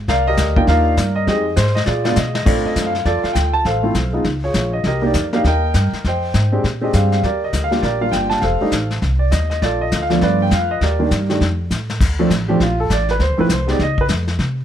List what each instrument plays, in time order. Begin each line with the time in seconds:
0.08 upright bass C2, grand piano A#4 D5 F5, brush sweep, kick, snare
0.28 grand piano G4 A#4 D#5
0.37 upright bass D2, kick, snare, hi-hat pedal
0.56 grand piano A#3 D4 D#4 F4 G5, kick
0.67 upright bass D#2, grand piano A#4 D5 F5, brush sweep, kick, snare
0.97 upright bass G2, kick, snare, hi-hat pedal
1.15 grand piano D#5
1.26 upright bass F2, grand piano G#3 C4 D#4 G4 G#4 D#5, brush sweep, kick, snare
1.56 upright bass G#2, grand piano C5, kick, snare, hi-hat pedal
1.66 snare
1.75 grand piano D#5, snare
1.86 upright bass A#2, grand piano F4 G#4 D5, snare
2.04 grand piano G#3 B3 D4 F4 D5, snare
2.16 upright bass B2, grand piano D#5, snare, hi-hat pedal
2.35 grand piano D#5, snare
2.45 upright bass A#2, grand piano A3 C4 D4 F4 A4 D5, brush sweep, kick, snare, crash
2.65 grand piano D#5, muted upright bass stroke
2.76 upright bass F#2, kick, snare, hi-hat pedal
2.86 grand piano F5
2.95 snare
3.05 upright bass F2, grand piano F4 A4 D5, brush sweep, kick, snare
3.24 grand piano F5, muted upright bass stroke, snare
3.33 upright bass D2, grand piano G5, kick, snare, hi-hat pedal
3.54 grand piano A5
3.65 upright bass A1, grand piano A4 C5 F5, brush sweep, kick, snare
3.83 grand piano A3 C4 E4 F4
3.95 upright bass B1, kick, snare, hi-hat pedal
4.13 grand piano G#3 B3 D#4 F4
4.24 upright bass C#2, brush sweep, kick, snare
4.44 grand piano F4 G#4 C#5
4.54 upright bass A#1, kick, snare, hi-hat pedal
4.73 grand piano D#5
4.84 upright bass C2, grand piano G4 A#4 D#5, brush sweep, kick, snare
5.02 grand piano A#3 D4 D#4 G4
5.06 grand piano D5
5.14 upright bass F2, kick, snare, hi-hat pedal
5.33 grand piano A#3 D4 D#4 G4 F5, snare
5.44 upright bass D#2, grand piano A#4 D#5 G5, brush sweep, kick, snare
5.74 upright bass G2, kick, snare, hi-hat pedal
5.93 muted upright bass stroke, snare
6.04 upright bass F2, grand piano C5 D#5 G5, brush sweep, kick, snare
6.34 upright bass G#2, kick, snare, hi-hat pedal
6.52 grand piano G#3 C4 D4 G4
6.64 upright bass A#2, brush sweep, kick, snare
6.81 grand piano G#3 C4 D4 G4 D#5
6.93 upright bass G2, grand piano F5, kick, snare, hi-hat pedal
7.12 grand piano F5, snare
7.23 upright bass D#2, grand piano G4 A#4 D5, brush sweep, kick, snare
7.44 grand piano D#5
7.53 upright bass D2, kick, snare, hi-hat pedal
7.64 grand piano F5
7.71 grand piano G3 A#3 D4 F4, snare
7.82 upright bass A#1, grand piano G4 A#4 D5, brush sweep, kick, snare
8.01 grand piano G3 A#3 D4 F4 F5
8.11 upright bass G1, grand piano G5, kick, snare, hi-hat pedal
8.30 grand piano A5, snare
8.41 upright bass F1, grand piano A4 C5 F5, brush sweep, kick, snare
8.61 grand piano G3 A3 D4 D#4, muted upright bass stroke
8.71 upright bass A1, kick, snare, hi-hat pedal
8.91 snare
9.02 upright bass C2, brush sweep, kick, snare
9.19 grand piano D5
9.31 upright bass D#2, grand piano D#5, kick, snare, hi-hat pedal
9.50 grand piano D#5, snare
9.62 upright bass A#1, grand piano F4 A4 D5, brush sweep, kick, snare
9.81 grand piano D#5
9.92 upright bass D2, kick, snare, hi-hat pedal
10.02 grand piano F5
10.10 grand piano F3 A3 B3 D4, snare
10.21 upright bass G2, grand piano F4 B4 D5, brush sweep, kick, snare
10.42 grand piano G5
10.51 upright bass F2, grand piano F5, kick, snare, hi-hat pedal
10.71 grand piano D#5
10.81 upright bass D#2, grand piano G4 A#4 D5, brush sweep, kick, snare
10.99 grand piano D#3 G3 A#3 D4
11.11 upright bass G2, kick, snare, hi-hat pedal
11.29 grand piano D#3 G3 A3 D4, snare
11.41 upright bass F2, brush sweep, kick, snare
11.70 upright bass A2, snare, hi-hat pedal
11.90 snare
12.00 upright bass D2, brush sweep, kick, snare, crash
12.19 grand piano F3 A3 C4 D4
12.30 upright bass A1, kick, snare, hi-hat pedal
12.48 grand piano F3 A3 C4 D4 G4
12.58 upright bass A#1, grand piano E4, brush sweep, kick, snare
12.63 grand piano F4
12.80 grand piano A4
12.90 upright bass A1, grand piano D5, kick, snare, hi-hat pedal
13.09 grand piano B4, snare
13.19 upright bass D2, grand piano C5, brush sweep, kick, snare
13.29 upright bass C2
13.38 upright bass A1, grand piano F3 A3 C4 E4 B4
13.49 upright bass C2, grand piano C5, kick, snare, hi-hat pedal
13.67 grand piano G#3 B3 D#4 G4, snare
13.71 grand piano D5
13.79 upright bass C#2, grand piano D#5, brush sweep, kick, snare
13.98 grand piano B4, kick
14.09 upright bass F2, kick, snare, hi-hat pedal
14.28 snare
14.39 upright bass C3, brush sweep, kick, snare